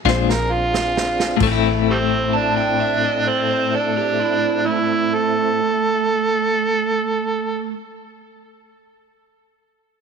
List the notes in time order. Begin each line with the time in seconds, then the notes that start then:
0.05 A#1 A#2 G#3 C4 D4 F4 G#4 C5, kick, snare
0.30 A#4, snare
0.52 F4
0.74 snare
0.97 snare
1.20 snare
1.37 A2 C4 E4 A4, crash
1.41 A1 A3, kick
1.47 C4
1.51 E4
1.90 G3 A3 C4
2.33 D4 A5
2.57 G5
2.80 E5
3.04 D#5
3.28 C4 D5
3.50 C5
3.74 D4 A4
3.97 G4
4.20 E4
4.66 A3 E4
5.14 A4